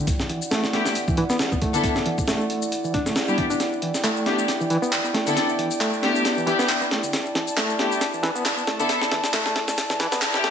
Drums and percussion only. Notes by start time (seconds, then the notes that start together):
0.07 kick, closed hi-hat, shaker
0.20 snare, shaker
0.29 closed hi-hat
0.42 shaker
0.51 snare, closed hi-hat, shaker
0.64 snare, shaker
0.73 snare, closed hi-hat
0.86 snare, shaker
0.95 closed hi-hat, shaker
1.08 kick, shaker
1.17 closed hi-hat
1.30 snare, shaker
1.39 snare, closed hi-hat, shaker
1.52 kick, shaker
1.62 kick, closed hi-hat
1.74 closed hi-hat, shaker
1.84 kick, closed hi-hat, shaker
1.96 snare, shaker
2.06 closed hi-hat
2.18 kick, shaker
2.28 snare, closed hi-hat, shaker
2.40 shaker
2.50 closed hi-hat
2.62 shaker
2.72 closed hi-hat, shaker
2.84 shaker
2.94 kick, closed hi-hat
3.06 snare, shaker
3.16 snare, closed hi-hat, shaker
3.28 shaker
3.38 kick, closed hi-hat
3.51 shaker
3.60 snare, closed hi-hat, shaker
3.72 shaker
3.82 closed hi-hat
3.94 snare, shaker
4.04 clap, closed hi-hat, shaker
4.17 shaker
4.26 snare, closed hi-hat
4.39 shaker
4.48 snare, closed hi-hat, shaker
4.61 shaker
4.70 closed hi-hat
4.83 shaker
4.92 clap, closed hi-hat, shaker
5.05 shaker
5.15 snare, closed hi-hat
5.27 closed hi-hat, shaker
5.37 snare, closed hi-hat, shaker
5.49 shaker
5.59 closed hi-hat
5.71 shaker
5.81 clap, closed hi-hat, shaker
5.93 shaker
6.03 snare, closed hi-hat
6.15 shaker
6.25 snare, closed hi-hat, shaker
6.38 shaker
6.47 closed hi-hat
6.59 snare, shaker
6.69 clap, closed hi-hat, shaker
6.81 shaker
6.91 snare, closed hi-hat
7.03 shaker
7.13 snare, closed hi-hat, shaker
7.25 shaker
7.35 snare, closed hi-hat
7.47 shaker
7.57 snare, clap, closed hi-hat, shaker
7.70 shaker
7.79 snare, closed hi-hat
7.92 shaker
8.01 snare, closed hi-hat, shaker
8.14 shaker
8.23 snare, closed hi-hat
8.36 shaker
8.45 snare, clap, closed hi-hat, shaker
8.58 shaker
8.67 snare, closed hi-hat
8.80 closed hi-hat, shaker
8.89 snare, closed hi-hat, shaker
9.02 snare, shaker
9.12 snare, closed hi-hat
9.24 snare, shaker
9.34 snare, clap, closed hi-hat, shaker
9.46 snare, shaker
9.56 snare, closed hi-hat
9.68 snare, shaker
9.78 snare, closed hi-hat, shaker
9.90 snare, shaker
10.00 snare, closed hi-hat
10.12 snare, closed hi-hat, shaker
10.22 snare, clap, closed hi-hat, shaker
10.34 snare, shaker
10.44 snare, closed hi-hat